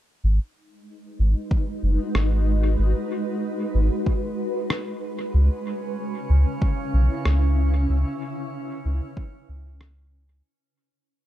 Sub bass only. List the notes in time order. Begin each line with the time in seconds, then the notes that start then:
0.24 G#1
1.19 G#1
1.83 F#1
2.15 G#1
2.79 G#1
3.74 G#1
5.34 C#2
6.30 C#2
6.94 B1
7.26 C#2
7.89 C#2
8.85 C#2
9.49 C#2